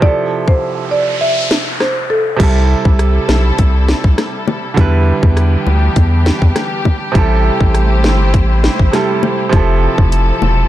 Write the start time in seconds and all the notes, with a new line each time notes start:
0.00 C3 F3 E4 D5, kick, noise sweep
0.06 A4
0.48 C5, kick
0.91 D5
1.21 E5
1.51 snare
1.80 C5, cross-stick, snare
2.10 A4
2.37 C2 C3 G3 E4 A4, kick, closed hi-hat, crash
2.41 E4 A4
2.85 C2, kick, high bongo
2.99 cross-stick, closed hi-hat
3.29 B1, snare, high bongo
3.58 C2, kick, closed hi-hat, high bongo
3.89 snare
4.04 C2, kick
4.18 cross-stick, snare, closed hi-hat, high bongo
4.48 high bongo, low bongo
4.74 E2 D3 E3 G3 B3 D4 G4, kick, closed hi-hat
4.79 E4 B4
5.23 E2, kick, high bongo
5.37 cross-stick, closed hi-hat
5.67 D2, high bongo
5.96 E2, kick, closed hi-hat, high bongo
6.26 snare
6.42 E2, kick
6.56 cross-stick, snare, closed hi-hat, high bongo
6.85 kick, high bongo, low bongo
7.12 A1 C3 G3 A3 E4 C5, kick, closed hi-hat
7.16 E4 A4
7.60 A1, kick, high bongo
7.74 cross-stick, closed hi-hat
8.04 G1, snare, high bongo
8.34 A1, kick, closed hi-hat, high bongo
8.64 snare
8.79 A1, kick
8.92 C3 G3 E4 A4, cross-stick, snare, closed hi-hat, high bongo
9.23 high bongo, low bongo
9.49 F1 C3 F3 C4 A4, kick, closed hi-hat
9.54 E4 A4
9.98 F1, kick, high bongo
10.12 closed hi-hat
10.42 E1, high bongo, low bongo